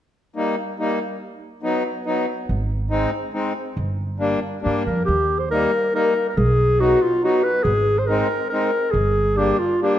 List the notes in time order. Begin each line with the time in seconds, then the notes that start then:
0.36 G3 A#3 D#4
0.79 G3 A#3 D#4
1.63 F#3 B3 D#4
2.06 F#3 B3 D#4
2.49 G#1
2.90 G#3 C4 D#4
3.33 G#3 C4 D#4
3.77 G1
4.19 G3 A#3 D4
4.62 G2 G3 A#3 D4
4.86 F2 A#4
5.05 D#2 G4
5.39 C5
5.51 G3 A#3 D#4 A#4
5.94 G3 A#3 D#4 A#4
6.29 A#4
6.37 B1 G#4
6.79 F#3 B3 D#4 F#4
7.03 F4
7.23 F#3 B3 D#4 F#4
7.44 B4
7.64 G#1 G#4
7.99 C5
8.07 G#3 C4 D#4 A#4
8.49 G#3 C4 D#4 A#4
8.91 G1 G#4
9.36 G3 A#3 D4 G4
9.59 F4
9.81 G3 A#3 D4 G4